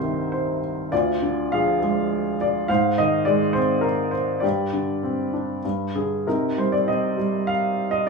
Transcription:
0.00 0.88 C2 soft
0.00 0.58 G2 soft
0.00 0.88 C3 soft
0.00 0.89 D#3 soft
0.00 0.93 D#4 soft
0.00 0.94 A#4 soft
0.00 0.32 C5 medium
0.32 0.94 C5 soft
0.92 2.65 D2 soft
0.92 1.78 F4 soft
0.92 1.54 D5 soft
1.22 2.36 D3 soft
1.52 2.66 F3 soft
1.52 2.37 G#4 soft
1.52 2.42 F5 medium
1.81 2.66 G#3 soft
2.41 2.70 D5 soft
2.68 4.40 G#2 soft
2.68 3.52 C5 soft
2.68 2.98 F5 medium
2.98 4.11 D#3 soft
2.98 3.25 D#5 medium
3.25 4.40 G#3 soft
3.25 3.56 D5 medium
3.53 4.41 C4 soft
3.53 3.84 C5 medium
3.81 4.10 A#4 soft
4.11 4.43 C5 soft
4.40 5.60 G2 soft
4.40 5.59 G4 soft
4.40 5.58 D5 soft
4.73 5.61 D3 soft
5.03 5.62 C4 soft
5.33 5.63 D4 soft
5.65 6.25 G2 soft
5.95 6.25 D3 soft
5.95 6.24 G#4 soft
6.27 8.04 C3 soft
6.27 7.16 D#4 soft
6.27 6.59 A#4 soft
6.57 7.16 G3 soft
6.57 6.74 C5 soft
6.72 6.88 D5 soft
6.87 8.04 C4 soft
6.87 7.50 D#5 soft
7.17 8.05 G3 soft
7.47 7.89 F5 medium
7.91 8.07 D#5 medium

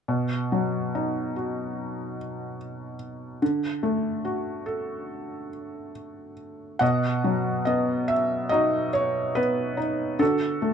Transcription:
0.08 3.38 B2 soft
0.52 2.15 F#3 soft
0.95 2.56 D#4 soft
1.36 2.96 F#4 soft
3.42 6.78 D3 medium
3.83 5.47 A3 soft
4.25 5.90 F#4 soft
4.66 6.34 A4 soft
6.79 10.16 B2 soft
6.79 7.64 D#5 medium
6.79 7.63 F#5 medium
7.24 8.90 F#3 soft
7.65 9.31 B3 soft
7.65 8.10 D#5 medium
8.08 8.48 E5 medium
8.49 9.76 D#4 soft
8.49 10.16 F#4 soft
8.49 8.89 D#5 medium
8.93 9.37 C#5 medium
9.35 10.18 B3 soft
9.35 10.22 B4 medium
9.77 10.18 D#4 soft
10.19 10.73 D3 medium
10.19 10.73 F#4 soft
10.19 10.73 A4 medium
10.62 10.73 A3 soft

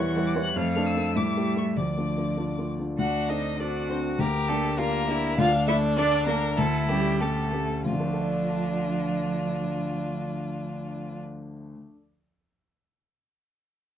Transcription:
0.00 0.55 E3 loud
0.00 0.16 G3 medium
0.00 0.17 E4 medium
0.00 0.17 C#5 medium
0.00 0.56 F#5 medium
0.00 0.26 C#6 loud
0.16 0.34 G3 medium
0.16 0.34 E4 medium
0.16 0.34 C#5 medium
0.26 0.32 D6 loud
0.35 0.53 G3 medium
0.35 0.53 E4 medium
0.35 0.54 C#5 medium
0.43 0.58 F#6 loud
0.56 0.75 F2 loud
0.56 1.17 A3 loud
0.56 1.14 F5 medium
0.56 0.88 F6 loud
0.76 0.93 A3 medium
0.76 0.94 D4 medium
0.76 0.94 A4 medium
0.87 1.18 E6 loud
0.97 1.14 A3 medium
0.97 1.14 D4 medium
0.97 1.14 A4 medium
1.15 1.35 A2 medium
1.15 1.77 G3 medium
1.15 1.78 E5 medium
1.15 1.56 D6 loud
1.37 1.54 A3 medium
1.37 1.55 E4 medium
1.37 1.55 G4 medium
1.56 1.74 A3 soft
1.56 1.74 E4 soft
1.56 1.75 G4 medium
1.56 1.66 C#6 medium
1.76 1.96 D2 medium
1.76 2.78 F3 medium
1.76 2.79 D5 medium
1.76 2.67 D6 medium
1.98 2.15 A3 medium
1.98 2.16 D4 soft
1.98 2.16 F4 medium
2.17 2.35 A3 soft
2.17 2.36 D4 soft
2.17 2.36 F4 soft
2.37 2.56 A3 soft
2.37 2.56 D4 soft
2.37 2.56 F4 medium
2.58 2.76 A3 soft
2.58 2.77 D4 soft
2.58 2.77 F4 soft
2.79 2.97 A3 soft
2.79 2.97 D4 soft
2.79 2.97 F4 soft
2.98 3.28 D2 medium
2.98 3.55 D4 medium
2.98 3.30 F#4 medium
2.98 3.31 F#5 loud
3.29 3.56 C4 medium
3.29 3.56 D4 soft
3.29 3.61 D#4 medium
3.29 3.57 A4 medium
3.29 3.62 D#5 loud
3.59 3.86 C4 medium
3.59 3.90 D4 medium
3.59 3.86 D4 medium
3.59 4.21 F#4 medium
3.59 3.86 A4 medium
3.59 3.89 D5 medium
3.89 4.17 C4 medium
3.89 4.16 C4 medium
3.89 4.16 D4 medium
3.89 4.16 A4 medium
3.89 3.98 C5 medium
4.18 4.48 D2 medium
4.18 4.26 A#3 loud
4.18 4.80 G4 loud
4.18 4.50 A#4 loud
4.49 4.78 A3 loud
4.49 4.75 A#3 medium
4.49 4.76 D4 medium
4.49 4.75 G4 medium
4.49 4.78 A4 loud
4.78 5.05 A#3 medium
4.78 5.37 A#3 loud
4.78 5.05 D4 medium
4.78 5.08 F4 medium
4.78 5.06 G4 medium
4.78 5.37 A#4 loud
5.08 5.35 A#3 medium
5.08 5.35 D4 medium
5.08 5.40 E4 loud
5.08 5.35 G4 medium
5.38 5.67 D2 loud
5.38 6.57 D4 loud
5.38 5.46 F4 loud
5.38 5.67 F5 loud
5.67 5.94 A3 medium
5.67 5.94 D4 medium
5.67 5.76 E4 loud
5.67 5.95 A4 medium
5.67 5.75 E5 loud
5.96 6.24 A3 medium
5.96 6.24 D4 medium
5.96 6.27 D4 loud
5.96 6.24 A4 medium
5.96 6.25 D5 loud
6.26 6.54 A3 medium
6.26 6.36 A#3 loud
6.26 6.54 D4 medium
6.26 6.55 A4 medium
6.26 6.59 A#4 loud
6.57 6.88 D2 loud
6.57 6.88 A3 medium
6.57 7.22 E4 loud
6.57 6.90 A4 loud
6.88 7.22 G3 loud
6.88 7.18 A3 medium
6.88 7.18 C#4 medium
6.88 7.22 G4 loud
6.88 7.18 G4 medium
7.20 7.84 A3 medium
7.20 7.50 A3 medium
7.20 7.50 C#4 medium
7.20 7.53 G4 medium
7.20 7.50 G4 medium
7.20 7.85 A4 loud
7.53 7.82 A3 soft
7.53 7.82 C#4 soft
7.53 7.83 G4 medium
7.85 11.73 D2 medium
7.85 11.21 F3 loud
7.85 11.21 D4 medium
7.85 11.21 F4 medium
7.93 11.80 D3 medium
8.00 11.87 A3 medium
8.06 11.93 D4 medium
8.13 12.00 A4 medium
8.21 12.08 D5 medium

